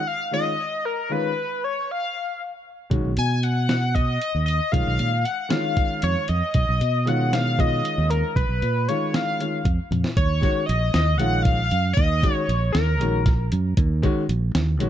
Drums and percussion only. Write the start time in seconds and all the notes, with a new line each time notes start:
2.91 kick, closed hi-hat
3.17 closed hi-hat
3.43 closed hi-hat
3.69 snare, closed hi-hat
3.95 kick, closed hi-hat
4.22 closed hi-hat
4.48 closed hi-hat
4.73 kick, closed hi-hat
4.99 closed hi-hat
5.25 closed hi-hat
5.50 snare, closed hi-hat
5.77 kick, closed hi-hat
6.02 closed hi-hat
6.28 closed hi-hat
6.54 kick, closed hi-hat
6.81 closed hi-hat
7.07 closed hi-hat
7.33 snare, closed hi-hat
7.59 kick, closed hi-hat
7.85 closed hi-hat
8.11 closed hi-hat
8.36 kick, closed hi-hat
8.62 closed hi-hat
8.89 closed hi-hat
9.14 snare, closed hi-hat
9.40 closed hi-hat
9.65 kick, closed hi-hat
9.92 closed hi-hat, high tom
10.04 snare
10.17 kick, closed hi-hat
10.43 kick, snare, closed hi-hat
10.69 closed hi-hat
10.94 snare, closed hi-hat
11.19 closed hi-hat
11.45 kick, closed hi-hat
11.71 closed hi-hat
11.97 kick, closed hi-hat
12.23 kick, closed hi-hat
12.49 closed hi-hat
12.75 snare, closed hi-hat
13.01 closed hi-hat
13.26 kick, snare, closed hi-hat
13.52 closed hi-hat
13.77 kick, closed hi-hat
14.03 kick, closed hi-hat
14.29 closed hi-hat
14.55 snare, closed hi-hat
14.80 closed hi-hat